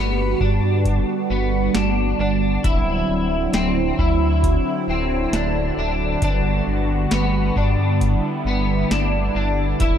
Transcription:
Already playing: G1 D3 G3 B3 F#4
0.40 G2 D4, kick
0.85 kick, closed hi-hat
1.30 G1 B3
1.75 G1 D4, snare, closed hi-hat
2.19 G1 D4
2.63 D1 F#3 C4 E4, kick, closed hi-hat
3.09 D1
3.53 D1 C4, snare, closed hi-hat
3.99 D2 E4, kick
4.44 kick, closed hi-hat
4.88 D1 C4
5.32 D1 D4, snare, closed hi-hat
5.77 D1 D4
6.20 G1 G3 B3 D4 F#4, kick, closed hi-hat
6.67 G1
7.11 G1 B3, snare, closed hi-hat
7.56 G2 D4, kick
7.99 E4, kick, closed hi-hat
8.45 G1 B3
8.91 G1 D4, snare, closed hi-hat
9.35 G1 D4
9.79 D1 F#3 C4 E4, kick, closed hi-hat

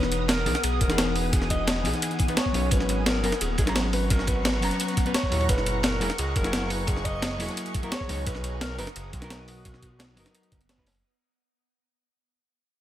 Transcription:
Already playing: E1 E3 B3 D#4 B4 C#5 G#5 D#6
0.03 snare, ride
0.12 closed hi-hat, ride
0.28 A#4, snare, closed hi-hat, ride
0.45 B1 E3 B3 D#4 G#4, open hi-hat, ride
0.55 snare, closed hi-hat
0.64 B1 G#4, closed hi-hat, ride
0.81 E1 A#4, kick, closed hi-hat, ride
0.87 E3 B3 D#4, snare, closed hi-hat
0.92 G#4
0.98 snare, closed hi-hat, ride
1.15 B4, open hi-hat, ride
1.33 E1 G#4, kick, closed hi-hat, ride
1.41 snare
1.50 D#5, kick, closed hi-hat, ride
1.67 snare, closed hi-hat, ride
1.83 B1 E3 B3 D#4, open hi-hat, ride
1.87 G#4
1.94 snare, closed hi-hat
2.02 closed hi-hat, ride
2.11 closed hi-hat
2.19 kick, closed hi-hat, ride
2.27 E3 B3 D#4 B4, closed hi-hat, ride
2.37 C#5, snare, closed hi-hat, ride
2.46 kick
2.52 B1 F#3 B3 C#4, open hi-hat, ride
2.56 C#5
2.71 G#1 B4 F#5 A#5 C#6, kick, closed hi-hat, ride
2.80 snare, ride
2.89 closed hi-hat, ride
3.06 A#4, snare, closed hi-hat, ride
3.23 F#1 F#3 B3 C#4 A#4, open hi-hat, ride
3.32 snare, closed hi-hat
3.41 D#1 G#4, closed hi-hat, ride
3.58 G#1 G#4, kick, closed hi-hat, ride
3.65 F#3 B3 C#4, snare, closed hi-hat
3.69 A#5
3.75 snare, closed hi-hat, ride
3.93 B4, open hi-hat, ride
4.10 G#1 A#4, kick, closed hi-hat, ride
4.19 snare
4.27 B4, kick, closed hi-hat, ride
4.45 snare, closed hi-hat, ride
4.60 F#1 F#3 B3 C#4, open hi-hat, ride
4.64 A#5
4.71 snare, closed hi-hat
4.80 closed hi-hat, ride
4.88 closed hi-hat
4.97 kick, closed hi-hat, ride
5.05 F#3 B3 C#4 B4, closed hi-hat, ride
5.14 C#5, snare, closed hi-hat, ride
5.23 kick
5.30 D#2 A#2 F#3 E4, open hi-hat, ride
5.34 C#5
5.41 ride
5.49 F#1 G#4 B4 C#6, kick, closed hi-hat, ride
5.58 snare, ride
5.66 closed hi-hat, ride
5.83 A#4, snare, closed hi-hat, ride
6.00 E1 F#3 A#3 E4 G#4, open hi-hat, ride
6.10 snare, closed hi-hat
6.18 C#2 G#4, closed hi-hat, ride
6.36 F#1 A#4, kick, closed hi-hat, ride
6.42 F#3 A#3 E4, snare, closed hi-hat
6.46 G#4
6.53 snare, closed hi-hat, ride
6.70 B4, open hi-hat, ride
6.87 F#1 G#4, kick, closed hi-hat, ride
6.96 snare
7.05 D#5, kick, closed hi-hat, ride
7.22 snare, closed hi-hat, ride
7.38 E1 F#3 A#3 E4, open hi-hat, ride
7.42 G#4
7.49 snare, closed hi-hat
7.57 closed hi-hat, ride
7.66 closed hi-hat
7.74 kick, closed hi-hat, ride
7.82 F#3 A#3 E4 A#4, closed hi-hat, ride
7.92 C#5, snare, closed hi-hat, ride
8.01 kick
8.07 C#2 F#3 B3 D#4, open hi-hat, ride
8.11 C#5
8.26 B1 B3 B4 D#6, kick, closed hi-hat, ride
8.34 snare, ride
8.44 closed hi-hat, ride
8.61 A#4, snare, closed hi-hat, ride
8.78 F#1 F#3 B3 D#4 A#4 B4, open hi-hat
8.87 snare, closed hi-hat
8.96 F#1 F#4, closed hi-hat, ride
9.13 B1, kick, closed hi-hat, ride
9.20 F#3 B3 D#4, snare, closed hi-hat
9.24 A#4
9.30 snare, closed hi-hat, ride
9.48 open hi-hat, ride
9.65 B1, kick, closed hi-hat, ride
9.74 snare
9.83 kick, closed hi-hat, ride
9.99 snare, closed hi-hat, ride
10.15 F#1 F#3 B3 D#4, open hi-hat, ride
10.19 A#4
10.26 snare, closed hi-hat
10.35 closed hi-hat, ride
10.43 closed hi-hat
10.52 F#1, kick, closed hi-hat, ride
10.61 closed hi-hat, ride
10.69 snare, closed hi-hat, ride
10.77 F#3 B3 D#4 B4, kick
10.87 F#1, snare, open hi-hat, ride
10.95 ride

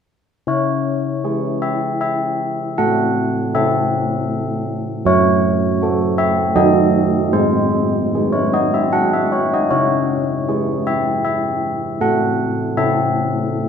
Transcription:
0.47 C#4 C#5
1.24 E4 G#4
1.62 E5
2.01 E5
2.78 A3 F#5
3.55 C#4 A4 E5
5.05 F#3 C#5
5.82 F#4 A4
6.18 E5
6.56 F#3 D#4 A4 D#5
7.33 G#3 C5
8.14 D#4 G#4
8.32 C#5
8.54 D#5
8.74 E5
8.93 F#5
9.13 E5
9.32 C#5
9.54 D#5
9.70 C#4 C#5
10.48 E4 G#4
10.87 E5
11.25 E5
12.01 A3 F#5
12.77 C#4 A4 E5

